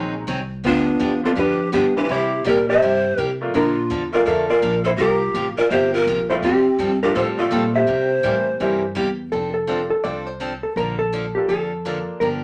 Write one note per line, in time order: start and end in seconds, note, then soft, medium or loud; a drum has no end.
0.00 0.27 A#1 medium
0.00 0.13 D#3 medium
0.00 0.13 F#3 medium
0.00 0.26 F#3 medium
0.00 0.26 G#3 medium
0.00 0.13 C4 medium
0.00 0.25 C4 medium
0.00 0.26 C4 medium
0.00 0.14 D#4 medium
0.00 0.23 D#4 medium
0.00 0.26 D#4 medium
0.00 0.26 F#4 medium
0.00 0.14 G#4 medium
0.00 0.24 G#4 medium
0.27 0.63 C2 medium
0.27 0.39 D#3 medium
0.27 0.39 F#3 medium
0.27 0.39 C4 medium
0.27 0.39 D#4 medium
0.27 0.39 G#4 medium
0.64 0.99 D2 medium
0.64 0.86 D3 medium
0.64 0.86 F3 medium
0.64 0.86 B3 medium
0.64 1.20 B3 medium
0.64 0.86 D4 medium
0.64 1.21 D4 medium
0.64 1.26 F4 medium
0.64 0.86 G4 medium
0.99 1.36 E2 loud
0.99 1.11 D3 medium
0.99 1.12 F3 medium
0.99 1.12 B3 medium
0.99 1.12 D4 medium
0.99 1.12 G4 medium
1.23 1.35 F3 medium
1.23 1.36 G3 medium
1.23 1.36 B3 medium
1.23 1.30 C4 medium
1.23 1.36 D4 medium
1.23 1.36 F4 medium
1.23 1.31 F4 medium
1.23 1.31 A4 medium
1.35 1.72 F2 medium
1.35 1.58 D3 medium
1.35 1.58 F3 medium
1.35 1.58 B3 medium
1.35 1.58 D4 medium
1.35 1.71 D4 medium
1.35 1.70 G4 medium
1.35 1.58 G4 medium
1.39 1.72 B4 loud
1.72 2.08 G2 medium
1.72 1.84 D3 medium
1.72 1.84 F3 medium
1.72 1.94 B3 medium
1.72 1.84 B3 medium
1.72 1.85 D4 medium
1.72 1.95 D4 medium
1.72 1.85 G4 medium
1.72 1.97 G4 medium
1.96 2.08 E3 medium
1.96 2.08 G3 medium
1.96 2.08 A#3 medium
1.96 2.09 C4 medium
1.96 2.04 D4 medium
1.96 2.08 E4 medium
1.96 2.03 G4 medium
1.96 2.02 B4 medium
2.03 2.10 G4 medium
2.03 2.12 B4 medium
2.09 2.30 C3 medium
2.09 2.44 C3 medium
2.09 2.31 G3 medium
2.09 2.31 A#3 medium
2.09 2.31 E4 medium
2.09 2.44 E4 medium
2.09 2.31 G4 medium
2.09 2.46 G4 medium
2.09 2.48 C5 loud
2.45 2.81 A#2 medium
2.45 2.56 C3 medium
2.45 2.57 G3 medium
2.45 2.57 A#3 medium
2.45 2.57 E4 medium
2.45 2.57 G4 medium
2.45 2.67 G4 medium
2.45 2.68 A#4 medium
2.45 2.69 D5 medium
2.69 3.37 G4 medium
2.69 3.23 C5 loud
2.69 3.20 E5 loud
2.82 3.17 G2 medium
2.82 3.03 C3 medium
2.82 3.04 G3 medium
2.82 3.04 A#3 medium
2.82 3.04 E4 medium
2.82 3.04 G4 medium
3.18 3.29 C3 medium
3.18 3.53 C3 medium
3.18 3.29 G3 medium
3.18 3.30 A#3 medium
3.18 3.29 E4 medium
3.18 3.30 G4 medium
3.18 3.38 D5 loud
3.41 3.53 F3 medium
3.41 3.53 A3 medium
3.41 3.53 A#3 medium
3.41 3.54 D4 medium
3.41 3.54 F4 medium
3.54 3.89 A#2 medium
3.54 3.75 D3 soft
3.54 3.76 F3 medium
3.54 3.76 A#3 medium
3.54 3.76 D4 medium
3.54 4.10 D4 medium
3.54 4.10 F4 medium
3.54 3.76 A4 medium
3.54 4.16 A#4 loud
3.90 4.25 E2 medium
3.90 4.02 D3 medium
3.90 4.02 F3 medium
3.90 4.02 A#3 medium
3.90 4.02 D4 medium
3.90 4.02 A4 medium
4.12 4.60 F3 medium
4.12 4.60 A3 medium
4.12 4.60 A#3 medium
4.12 4.60 D4 medium
4.12 4.60 F4 medium
4.12 4.26 F4 medium
4.12 4.25 A#4 medium
4.12 4.28 D5 medium
4.25 4.62 F2 medium
4.25 4.48 D3 medium
4.25 4.48 F3 medium
4.25 4.48 A#3 medium
4.25 4.48 D4 medium
4.25 4.48 A4 medium
4.25 4.49 A4 medium
4.25 4.49 A#4 medium
4.25 4.50 E5 loud
4.49 4.83 F4 medium
4.49 4.83 A#4 medium
4.49 4.87 D5 medium
4.62 4.97 A#1 loud
4.62 4.74 D3 medium
4.62 4.74 F3 medium
4.62 4.74 A#3 medium
4.62 4.74 D4 medium
4.62 4.74 A4 medium
4.84 4.92 E4 medium
4.84 4.90 A4 medium
4.84 4.91 C5 medium
4.97 5.33 C2 loud
4.97 5.20 C3 medium
4.97 5.20 F3 medium
4.97 5.21 A#3 medium
4.97 5.21 F4 medium
4.97 5.55 F4 medium
4.97 5.53 G4 medium
4.97 5.21 G4 medium
5.01 5.55 A#4 loud
5.34 5.56 A1 medium
5.34 5.46 C3 medium
5.34 5.46 F3 medium
5.34 5.46 A#3 medium
5.34 5.46 F4 medium
5.34 5.47 G4 medium
5.57 5.71 F4 medium
5.57 5.71 A#4 medium
5.57 5.72 D5 medium
5.57 muted upright bass stroke soft
5.70 6.06 G1 medium
5.70 5.93 C3 medium
5.70 5.93 F3 medium
5.70 5.93 A#3 medium
5.70 5.93 F4 medium
5.70 5.93 G4 medium
5.70 5.95 C5 medium
5.70 5.94 E5 loud
5.94 6.28 F4 medium
5.94 6.29 A#4 medium
5.94 6.30 D5 medium
6.06 6.42 A#1 medium
6.06 6.19 C3 medium
6.06 6.19 F3 medium
6.06 6.19 A#3 medium
6.06 6.19 F4 medium
6.06 6.19 G4 medium
6.30 6.42 F3 medium
6.30 6.42 G3 medium
6.30 6.42 A3 medium
6.30 6.42 C4 medium
6.30 6.35 E4 medium
6.30 6.43 F4 medium
6.30 6.36 A4 medium
6.30 6.35 C5 medium
6.42 6.64 F2 medium
6.42 6.64 F3 medium
6.42 6.65 G3 medium
6.42 6.65 C4 medium
6.42 6.99 C4 medium
6.42 6.65 F4 medium
6.42 6.99 G4 loud
6.42 6.65 A4 medium
6.66 muted upright bass stroke soft
6.79 7.14 G2 loud
6.79 6.90 F3 medium
6.79 6.91 G3 medium
6.79 6.91 C4 medium
6.79 6.91 F4 medium
6.79 6.91 A4 medium
7.03 7.14 F3 medium
7.03 7.15 G3 medium
7.03 7.15 A3 medium
7.03 7.15 C4 medium
7.03 7.15 D4 medium
7.03 7.15 F4 medium
7.03 7.15 G4 medium
7.03 7.16 A#4 medium
7.15 7.51 A2 medium
7.15 7.37 F3 medium
7.15 7.37 G3 medium
7.15 7.37 C4 medium
7.15 7.37 F4 medium
7.15 7.24 F4 medium
7.15 7.28 A4 medium
7.15 7.37 A4 medium
7.15 7.23 C5 medium
7.38 7.85 F3 medium
7.38 7.85 G3 medium
7.38 7.85 A3 medium
7.38 7.85 C4 medium
7.38 7.85 F4 medium
7.38 7.73 F4 medium
7.38 7.74 A4 medium
7.38 7.75 D5 loud
7.51 7.87 A#2 loud
7.51 7.63 F3 medium
7.51 7.63 G3 medium
7.51 7.63 C4 medium
7.51 7.63 F4 medium
7.51 7.63 A4 medium
7.74 8.93 G4 medium
7.74 8.92 C5 medium
7.74 8.93 E5 medium
7.87 8.09 C3 soft
7.87 8.23 C3 medium
7.87 8.09 G3 medium
7.87 8.09 A#3 medium
7.87 8.09 E4 medium
7.87 8.09 G4 medium
8.23 8.59 A2 medium
8.23 8.35 C3 medium
8.23 8.45 E3 medium
8.23 8.35 G3 medium
8.23 8.45 G3 medium
8.23 8.35 A#3 medium
8.23 8.45 A#3 medium
8.23 8.45 C4 medium
8.23 8.35 E4 medium
8.23 8.45 E4 medium
8.23 8.35 G4 medium
8.60 8.95 G2 medium
8.60 8.81 C3 medium
8.60 8.81 E3 medium
8.60 8.82 G3 medium
8.60 8.81 G3 medium
8.60 8.82 A#3 medium
8.60 8.81 A#3 medium
8.60 8.81 C4 medium
8.60 8.82 E4 medium
8.60 8.81 E4 medium
8.60 8.82 G4 medium
8.95 9.31 E2 medium
8.95 9.07 C3 medium
8.95 9.07 G3 medium
8.95 9.07 A#3 medium
8.95 9.07 E4 medium
8.95 9.08 G4 medium
9.32 9.90 F1 medium
9.32 9.54 F3 soft
9.32 9.54 C4 soft
9.32 9.54 D4 medium
9.32 9.53 A4 medium
9.32 9.54 A4 medium
9.54 9.89 A4 medium
9.67 9.79 F3 medium
9.67 9.89 C4 medium
9.67 9.80 C4 medium
9.67 9.89 D4 medium
9.67 9.80 D4 medium
9.67 9.89 F4 medium
9.67 9.89 A4 medium
9.67 9.80 A4 medium
9.90 10.05 A4 medium
10.04 10.63 C2 medium
10.04 10.26 F3 medium
10.04 10.25 C4 medium
10.04 10.26 C4 medium
10.04 10.25 D4 medium
10.04 10.26 D4 medium
10.04 10.25 F4 medium
10.04 10.25 A4 medium
10.04 10.26 A4 medium
10.04 10.27 D5 medium
10.27 10.63 C5 medium
10.40 10.52 F3 medium
10.40 10.52 C4 medium
10.40 10.52 D4 medium
10.40 10.52 A4 medium
10.63 10.77 A4 medium
10.76 11.34 A#1 medium
10.76 10.99 D3 soft
10.76 10.99 F3 medium
10.76 10.99 A#3 medium
10.76 10.99 D4 medium
10.76 10.99 A4 medium
10.76 10.98 A#4 medium
10.99 11.37 A4 medium
11.12 11.24 D3 medium
11.12 11.25 F3 medium
11.12 11.25 A#3 medium
11.12 11.25 D4 medium
11.12 11.25 A4 medium
11.35 11.48 A#3 medium
11.35 11.48 D4 medium
11.35 11.49 F4 soft
11.35 11.49 G4 medium
11.35 11.49 A4 medium
11.48 12.07 F2 medium
11.48 11.71 D3 medium
11.48 11.71 F3 medium
11.48 11.71 A#3 medium
11.48 11.71 D4 medium
11.48 12.04 A4 medium
11.48 11.71 A4 medium
11.85 11.97 D3 medium
11.85 11.97 F3 medium
11.85 12.22 A#3 medium
11.85 11.97 A#3 medium
11.85 12.22 D4 medium
11.85 11.97 D4 medium
11.85 12.22 F4 medium
11.85 11.97 A4 medium
11.85 12.22 A4 medium
12.20 12.44 G1 loud
12.20 12.43 D3 medium
12.20 12.43 F3 medium
12.20 12.44 A#3 medium
12.20 12.44 D4 medium
12.20 12.44 G4 medium
12.20 12.27 A#4 medium